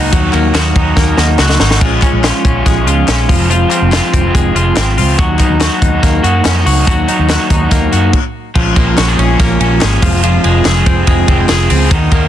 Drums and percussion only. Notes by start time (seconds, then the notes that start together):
0.12 kick, hi-hat pedal, ride
0.33 clap, ride
0.55 snare, clap, ride
0.76 kick, ride
0.97 kick, snare
1.18 snare
1.39 snare, clap
1.50 snare
1.60 snare
1.71 snare
1.81 kick, crash
2.02 kick, clap, closed hi-hat
2.24 snare, clap, closed hi-hat
2.45 kick, closed hi-hat
2.66 kick, snare, closed hi-hat
2.87 closed hi-hat
3.08 snare, clap, closed hi-hat
3.29 kick, open hi-hat
3.51 closed hi-hat
3.71 clap, closed hi-hat
3.92 snare, clap, closed hi-hat
4.14 kick, closed hi-hat
4.35 kick, closed hi-hat
4.56 closed hi-hat
4.77 snare, clap, closed hi-hat
4.98 open hi-hat
5.19 kick, closed hi-hat
5.39 kick, clap, closed hi-hat
5.61 snare, clap, closed hi-hat
5.82 kick, closed hi-hat
6.03 kick, snare, closed hi-hat
6.24 closed hi-hat
6.45 snare, clap, closed hi-hat
6.66 open hi-hat
6.87 kick, closed hi-hat
7.08 closed hi-hat
7.30 snare, clap, closed hi-hat
7.50 kick, closed hi-hat
7.71 kick, snare, closed hi-hat
7.93 closed hi-hat
8.13 kick, crash
8.55 kick, crash
8.76 kick, ride
8.98 snare, clap, ride
9.19 ride
9.40 kick, snare, ride
9.61 ride
9.81 snare, clap, ride
10.02 kick, open hi-hat, ride
10.23 hi-hat pedal, ride
10.44 ride
10.65 snare, clap, ride
10.86 kick, ride
11.07 kick, ride
11.28 kick, ride
11.49 snare, clap, ride
11.70 open hi-hat, ride
11.91 kick, hi-hat pedal, ride
12.11 kick, ride